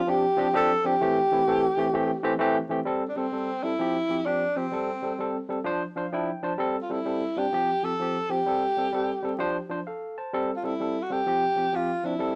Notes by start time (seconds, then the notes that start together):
Already playing: F4
0.07 F3 C4 D4 G4
0.37 F3 C4 D4 G4
0.53 F3 C4 D4 G4 A4
0.84 F3 C4 D4 G4
1.01 E3 A3 C4 G4
1.31 E3 A3 C4 E4
1.47 E3 A3 C4 A4
1.77 E3 A3 C4 G4
1.93 E3 A3 C4 G4
2.23 E3 A3 C4 G4
2.39 E3 A3 C4 G4
2.69 E3 A3 C4 G4
2.85 G3 C4 A4
3.08 D4
3.16 G3 C4 A4
3.32 G3 C4 A4
3.63 G3 C4 E4 A4
3.79 F3 C4 G4
4.09 F3 C4 G4
4.26 F3 C4 D4 G4
4.56 F3 C4 G4
4.72 G3 C4 A4
5.02 G3 C4 A4
5.19 G3 C4 A4
5.49 G3 C4 A4
5.64 F3 D4 C5
5.96 F3 D4 C5 F5
6.13 F3 D4 E4 G5
6.42 F3 D4 C5 A5
6.58 G3 C4 A4
6.82 F4
6.89 G3 C4 E4 A4
7.05 G3 C4 A4
7.36 G3 C4 D4 G4
7.52 F3 C4 G4
7.83 F3 C4 G4 A4
8.00 F3 C4 G4
8.29 F3 C4 G4
8.46 G3 C4 A4
8.77 G3 C4 A4
8.93 G3 C4 A4
9.23 G3 C4 A4
9.39 F3 D4 C5
9.69 F3 D4 C5
9.87 A4 F5
10.18 C5 A5
10.33 G3 C4 A4
10.56 F4
10.63 G3 C4 E4 A4
10.80 G3 C4 A4
11.03 F#4
11.10 G3 C4 G4 A4
11.26 F3 C4 G4
11.56 F3 C4 G4
11.73 F3 C4 F4 G4
12.04 F3 C4 D4 E4
12.19 G3 C4 A4